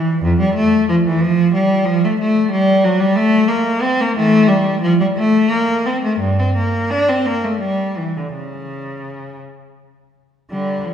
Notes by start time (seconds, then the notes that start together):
Already playing: E3
0.22 F2
0.40 G3
0.55 A3
0.89 F3
1.07 E3
1.21 F3
1.54 G3
1.85 F3
2.04 A3
2.20 A3
2.52 G3
2.84 F#3
3.00 G3
3.16 A3
3.48 A#3
3.82 C4
4.01 A#3
4.16 E3 A3
4.48 G3
4.81 F3
5.00 G3
5.17 A3
5.50 A#3
5.86 C4
6.04 A3
6.19 G2
6.39 C4
6.56 A#3
6.91 D4
7.09 C4
7.26 A#3
7.44 A3
7.61 G3
7.97 E3
8.16 D3
8.33 C#3
10.51 D3 G3
10.85 F3